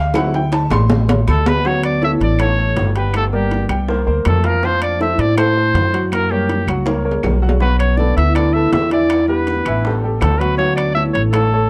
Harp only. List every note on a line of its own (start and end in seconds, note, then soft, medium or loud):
1.27 3.14 A3 medium
1.45 2.95 B3 medium
1.63 1.89 C#4 medium
1.83 2.20 D4 medium
2.01 2.07 E4 medium
2.20 2.46 D4 medium
2.40 4.69 C#4 medium
2.96 4.50 B3 medium
3.15 3.21 A3 medium
3.33 3.93 G3 medium
4.26 4.50 A3 medium
4.44 6.11 A#3 medium
4.63 5.38 C4 medium
4.81 5.19 D4 medium
5.01 7.62 E4 medium
5.19 7.85 D4 medium
5.38 7.67 C4 medium
6.12 7.67 A#3 medium
6.31 7.85 G3 medium
7.61 9.27 B3 medium
7.79 8.04 C#4 medium
7.98 8.35 D4 medium
8.17 8.53 E4 medium
8.35 8.89 D4 medium
8.53 8.71 E4 medium
8.72 10.94 E4 medium
8.89 10.63 D4 medium
9.27 10.39 B3 medium
10.20 11.32 A3 medium
10.39 11.70 B3 medium
10.57 10.81 C#4 medium
10.75 11.20 D4 medium
10.94 11.00 E4 medium
11.14 11.20 C#4 medium
11.32 11.70 A3 medium